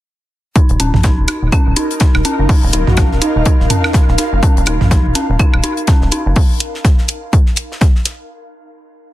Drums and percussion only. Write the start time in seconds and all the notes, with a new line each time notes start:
0.56 kick, closed hi-hat
0.69 closed hi-hat
0.80 closed hi-hat
0.94 snare, mid tom
1.03 kick, snare, closed hi-hat
1.28 snare, closed hi-hat, high woodblock
1.52 kick, closed hi-hat, claves
1.76 closed hi-hat
1.91 closed hi-hat
2.00 kick, snare, closed hi-hat
2.15 snare, high woodblock
2.25 closed hi-hat
2.49 kick, open hi-hat
2.73 closed hi-hat
2.87 snare, mid tom
2.97 kick, snare, closed hi-hat, high woodblock
3.12 snare
3.22 closed hi-hat
3.46 kick, closed hi-hat
3.61 snare
3.70 closed hi-hat, mid tom
3.84 snare, high woodblock
3.93 kick, snare, closed hi-hat
4.08 snare
4.18 snare, closed hi-hat
4.43 kick, closed hi-hat
4.57 closed hi-hat
4.66 closed hi-hat, high woodblock
4.81 snare, mid tom
4.91 kick, snare, closed hi-hat
5.15 snare, closed hi-hat
5.39 kick, closed hi-hat, claves
5.54 high woodblock
5.64 closed hi-hat
5.77 closed hi-hat
5.87 kick, snare, closed hi-hat
6.01 snare
6.12 closed hi-hat
6.36 kick, open hi-hat
6.60 closed hi-hat
6.74 snare
6.85 kick, snare, closed hi-hat
6.98 snare
7.08 closed hi-hat
7.33 kick, closed hi-hat
7.46 snare
7.56 closed hi-hat
7.72 snare
7.81 kick, snare, closed hi-hat
7.95 snare
8.05 snare, closed hi-hat